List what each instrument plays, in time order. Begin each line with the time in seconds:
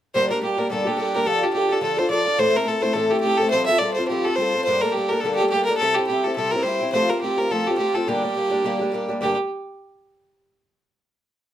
0.14 twelve-string acoustic guitar G2 D3 G3 A#3 D4 G4, fiddle C5
0.30 twelve-string acoustic guitar G3 A#3 D4 G4, fiddle A#4
0.41 twelve-string acoustic guitar G3 A#3 D4 G4, fiddle G4
0.57 twelve-string acoustic guitar G3 A#3 D4 G4, fiddle A#4
0.70 twelve-string acoustic guitar G2 D3 G3 A#3 D4 G4, fiddle A4
0.85 twelve-string acoustic guitar G3 A#3 D4 G4, fiddle G4
0.97 twelve-string acoustic guitar G3 A#3 D4 G4, fiddle G4 A4
1.14 twelve-string acoustic guitar G3 A#3 D4 G4, fiddle A#4
1.25 twelve-string acoustic guitar D3 F3 D4 F4 A4, fiddle A4
1.42 twelve-string acoustic guitar D4 F4 A4, fiddle G4
1.53 twelve-string acoustic guitar F3 D4 F4 A4, fiddle G4
1.69 twelve-string acoustic guitar D4 F4 A4, fiddle A4
1.81 twelve-string acoustic guitar D3 F3 D4 F4 A4, fiddle A4
1.97 twelve-string acoustic guitar D4 F4 A4, fiddle C5
2.09 twelve-string acoustic guitar F3 D4 F4 A4, fiddle D5
2.25 twelve-string acoustic guitar D4 F4 A4
2.38 twelve-string acoustic guitar A2 E3 A3 C4 E4 A4, fiddle C5
2.54 twelve-string acoustic guitar A3 C4 E4 A4, fiddle A#4
2.65 twelve-string acoustic guitar A3 C4 E4 A4, fiddle A4
2.81 twelve-string acoustic guitar A3 C4 E4 A4, fiddle C5
2.94 twelve-string acoustic guitar A2 E3 A3 C4 E4 A4, fiddle A4
3.10 twelve-string acoustic guitar A3 C4 E4 A4, fiddle G4
3.20 twelve-string acoustic guitar A3 C4, fiddle G4
3.26 twelve-string acoustic guitar E4 A4
3.37 fiddle A4, twelve-string acoustic guitar A4
3.41 twelve-string acoustic guitar A3 C4 E4
3.50 twelve-string acoustic guitar F3 G3 C4 F4, fiddle C5
3.55 twelve-string acoustic guitar A4
3.66 twelve-string acoustic guitar A4, fiddle E5
3.71 twelve-string acoustic guitar C4 F4
3.79 twelve-string acoustic guitar G3 C4 F4, fiddle D5
3.84 twelve-string acoustic guitar A4
3.94 twelve-string acoustic guitar A4, fiddle C5
3.98 twelve-string acoustic guitar C4 F4
4.08 twelve-string acoustic guitar F3 G3 C4 F4 A4, fiddle G4
4.24 twelve-string acoustic guitar C4 F4 A4, fiddle A4
4.36 twelve-string acoustic guitar G3 C4, fiddle C5
4.40 twelve-string acoustic guitar F4 A4
4.54 twelve-string acoustic guitar C4 F4 A4
4.64 twelve-string acoustic guitar G2 D3 G3 A#3, fiddle C5
4.69 twelve-string acoustic guitar D4 A4
4.82 twelve-string acoustic guitar A#3 D4 A4, fiddle A#4
4.86 twelve-string acoustic guitar G3
4.92 twelve-string acoustic guitar G3 A#3, fiddle G4
4.97 twelve-string acoustic guitar D4 A4
5.09 twelve-string acoustic guitar A#3 D4 A4, fiddle A#4
5.13 twelve-string acoustic guitar G3
5.21 twelve-string acoustic guitar G2 D3 G3, fiddle A4
5.25 twelve-string acoustic guitar A#3 D4 A4
5.35 fiddle G4
5.40 twelve-string acoustic guitar G3 A#3 D4 A4
5.50 twelve-string acoustic guitar G3 A#3, fiddle G4
5.54 twelve-string acoustic guitar D4 A4
5.65 twelve-string acoustic guitar A4, fiddle A#4
5.70 twelve-string acoustic guitar G3 A#3 D4
5.77 twelve-string acoustic guitar C3 G3, fiddle A4
5.81 twelve-string acoustic guitar C4 E4 G4
5.95 twelve-string acoustic guitar E4 G4, fiddle G4
5.99 twelve-string acoustic guitar C4
6.07 twelve-string acoustic guitar G3 C4 E4, fiddle G4
6.11 twelve-string acoustic guitar G4
6.24 twelve-string acoustic guitar C4 E4 G4, fiddle A4
6.36 twelve-string acoustic guitar C3 G3 C4 E4 G4, fiddle A4
6.51 twelve-string acoustic guitar E4 G4, fiddle A#4
6.56 twelve-string acoustic guitar C4
6.63 twelve-string acoustic guitar G3 C4 E4, fiddle C5
6.67 twelve-string acoustic guitar G4
6.81 twelve-string acoustic guitar C4 E4 G4
6.93 twelve-string acoustic guitar F3 A3 C4 F4 G4, fiddle C5
7.09 twelve-string acoustic guitar C4 F4 G4, fiddle A#4
7.22 twelve-string acoustic guitar A3 C4 F4, fiddle G4
7.26 twelve-string acoustic guitar G4
7.37 twelve-string acoustic guitar C4 F4 G4, fiddle A#4
7.51 twelve-string acoustic guitar F3 A3 C4 F4 G4, fiddle A4
7.67 twelve-string acoustic guitar C4 F4 G4, fiddle G4
7.78 twelve-string acoustic guitar A3 C4 F4 G4, fiddle G4
7.94 twelve-string acoustic guitar C4 F4 G4, fiddle A4
8.07 twelve-string acoustic guitar G2 D3 G3 A#3 D4 G4, fiddle G4
8.23 twelve-string acoustic guitar G3 A#3 D4 G4
8.35 twelve-string acoustic guitar G3 A#3 D4 G4
8.50 twelve-string acoustic guitar G3 A#3 D4 G4
8.64 twelve-string acoustic guitar G2 D3 G3 A#3 D4 G4
8.79 twelve-string acoustic guitar G3 A#3 D4 G4
8.92 twelve-string acoustic guitar G3 A#3 D4 G4
9.08 twelve-string acoustic guitar G3 A#3 D4 G4
9.21 twelve-string acoustic guitar G2 D3 G3 A#3 D4 G4, fiddle G4